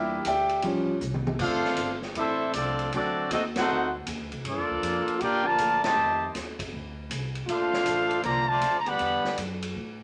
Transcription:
0.00 0.24 E2 medium
0.00 0.16 G3 medium
0.00 0.16 A#3 soft
0.00 0.17 D4 medium
0.00 0.24 E4 medium
0.00 0.24 G4 medium
0.00 0.24 A#4 medium
0.00 0.24 E5 medium
0.25 0.62 D2 loud
0.25 0.62 G4 medium
0.25 0.62 D5 medium
0.25 0.62 E5 medium
0.25 0.62 G5 medium
0.25 hi-hat pedal medium
0.25 ride medium
0.49 ride medium
0.62 1.00 A1 medium
0.62 0.92 F3 medium
0.62 0.92 G3 medium
0.62 0.93 C#4 medium
0.62 ride medium
1.01 1.38 C2 loud
1.01 hi-hat pedal medium
1.14 mid tom medium
1.27 mid tom loud
1.39 1.76 D2 medium
1.39 1.99 A3 medium
1.39 2.00 C4 medium
1.39 1.99 D4 medium
1.39 1.99 F4 medium
1.39 1.99 A4 medium
1.39 1.99 C5 medium
1.39 1.99 F5 loud
1.39 kick medium
1.39 crash medium
1.65 snare soft
1.76 2.15 G1 loud
1.76 hi-hat pedal medium
1.76 ride medium
2.02 snare soft
2.15 2.53 A1 medium
2.15 2.51 A3 medium
2.15 2.52 C4 medium
2.15 2.52 D4 medium
2.15 2.52 E4 medium
2.15 2.52 A4 medium
2.15 2.52 C5 medium
2.15 2.52 E5 loud
2.15 ride medium
2.53 2.91 C2 medium
2.53 2.90 F3 medium
2.53 2.90 A3 medium
2.53 2.90 C4 medium
2.53 2.90 D4 medium
2.53 2.90 F4 medium
2.53 2.90 A4 medium
2.53 2.90 D5 medium
2.53 hi-hat pedal medium
2.53 ride medium
2.79 ride medium
2.92 3.29 D2 medium
2.92 3.28 F#3 medium
2.92 3.28 A3 medium
2.92 3.29 C4 medium
2.92 3.28 D4 medium
2.92 3.28 F#4 medium
2.92 3.28 A4 medium
2.92 3.28 D5 loud
2.92 ride medium
3.30 3.67 D#2 loud
3.30 3.43 A3 medium
3.30 3.43 C4 medium
3.30 3.43 D#4 medium
3.30 3.43 F#4 medium
3.30 3.43 A4 medium
3.30 3.43 D#5 medium
3.30 hi-hat pedal medium
3.30 ride medium
3.56 3.91 A3 loud
3.56 3.91 C4 loud
3.56 3.92 D#4 loud
3.56 3.91 F#4 loud
3.56 3.92 A4 medium
3.56 3.92 C5 medium
3.56 3.92 F#5 loud
3.56 snare medium
3.56 ride medium
3.69 4.05 D2 medium
4.06 4.19 D#2 loud
4.06 hi-hat pedal medium
4.06 ride medium
4.19 4.31 D2 medium
4.32 4.44 C2 medium
4.32 ride medium
4.45 4.57 G2 medium
4.45 5.18 F3 medium
4.45 5.18 A#3 medium
4.45 5.18 D4 medium
4.45 5.18 F4 medium
4.45 5.18 A4 medium
4.45 5.18 D5 medium
4.45 ride medium
4.57 4.69 F2 medium
4.70 4.81 D2 medium
4.82 5.05 F2 medium
4.82 hi-hat pedal medium
4.82 ride medium
5.08 muted upright bass stroke soft
5.08 ride medium
5.20 5.57 A#2 medium
5.20 5.44 A#3 medium
5.20 5.45 D4 loud
5.20 5.45 F4 medium
5.20 5.45 G4 loud
5.20 5.46 A#4 loud
5.20 5.45 D5 medium
5.20 5.46 G5 loud
5.20 ride medium
5.45 5.84 D3 loud
5.45 5.83 F3 loud
5.45 5.83 A#3 loud
5.45 5.84 F4 loud
5.45 5.84 A#4 loud
5.45 5.84 D5 loud
5.45 5.83 A5 loud
5.58 5.95 A2 loud
5.58 hi-hat pedal medium
5.58 ride medium
5.82 6.30 C3 medium
5.82 6.30 D#3 medium
5.82 6.30 A3 medium
5.82 6.31 G4 medium
5.82 6.31 C5 medium
5.82 6.31 D#5 medium
5.82 6.31 A5 loud
5.82 snare medium
5.82 ride medium
5.97 6.33 F2 medium
6.34 6.71 D#2 medium
6.34 snare soft
6.34 hi-hat pedal medium
6.34 ride medium
6.59 kick medium
6.59 ride medium
6.72 7.09 D2 medium
7.10 7.47 C2 medium
7.10 hi-hat pedal medium
7.10 ride medium
7.35 ride medium
7.47 7.85 A#1 medium
7.47 8.20 A3 medium
7.47 8.20 D4 medium
7.47 8.21 D4 medium
7.47 8.20 F4 medium
7.47 8.21 A4 medium
7.47 8.21 C5 medium
7.47 8.21 F5 medium
7.47 ride medium
7.73 snare medium
7.86 8.23 A1 medium
7.86 hi-hat pedal medium
7.86 ride medium
8.11 ride medium
8.23 8.61 C2 medium
8.23 8.47 D3 loud
8.23 8.47 F3 loud
8.23 8.47 A#3 medium
8.23 8.47 F4 medium
8.23 8.46 C5 medium
8.23 8.47 D5 medium
8.23 8.47 A#5 loud
8.23 ride medium
8.47 8.77 D3 medium
8.47 8.77 F3 medium
8.47 8.77 A3 medium
8.47 8.77 F4 loud
8.47 8.77 C5 loud
8.47 8.77 D5 loud
8.47 8.77 A5 loud
8.61 8.99 D2 loud
8.61 hi-hat pedal medium
8.61 ride medium
8.79 8.88 A#5 medium
8.86 9.38 D3 medium
8.86 9.38 G3 medium
8.86 9.38 B3 loud
8.86 9.38 G4 medium
8.86 9.38 D5 medium
8.86 9.38 F#5 medium
8.86 9.38 B5 loud
8.86 ride medium
8.99 9.23 E2 medium
8.99 ride medium
9.25 snare medium
9.37 9.74 F#2 loud
9.37 hi-hat pedal medium
9.37 ride medium
9.62 ride medium
9.75 10.03 A2 medium

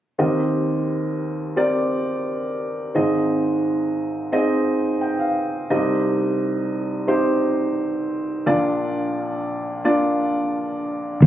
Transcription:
0.19 2.91 D#2 medium
0.19 2.91 D#3 medium
0.19 1.34 C4 medium
0.19 1.34 G4 soft
0.19 1.34 A#4 medium
0.19 1.34 D#5 medium
1.56 2.72 C4 medium
1.56 2.72 G4 medium
1.56 2.72 A#4 medium
1.56 2.72 D5 medium
2.95 5.67 G#1 soft
2.95 5.67 G#2 medium
2.95 4.10 C4 medium
2.95 4.10 D#4 medium
2.95 4.10 G#4 medium
2.95 4.10 D#5 medium
4.32 5.48 C4 medium
4.32 5.48 D#4 medium
4.32 5.48 G#4 medium
4.32 5.48 D#5 medium
5.01 5.17 G5 medium
5.19 5.67 F5 medium
5.70 8.43 C2 medium
5.70 8.42 C3 medium
5.70 6.86 C4 medium
5.70 6.86 D#4 medium
5.70 6.86 G4 medium
5.70 6.86 D#5 medium
7.08 8.24 C4 medium
7.08 8.24 D#4 medium
7.08 8.24 G4 medium
7.08 8.24 C5 medium
8.46 11.18 A#1 medium
8.46 11.19 A#2 medium
8.46 9.62 A#3 medium
8.46 9.62 D4 medium
8.46 9.62 F4 medium
8.46 9.62 D5 medium
9.84 11.00 A#3 medium
9.84 11.00 D4 medium
9.84 11.00 F4 medium
9.84 11.00 D5 medium
11.22 11.27 D#2 medium
11.22 11.27 D#3 medium
11.22 11.27 A#3 loud
11.22 11.27 D#4 medium
11.22 11.27 G4 medium
11.22 11.27 C5 loud

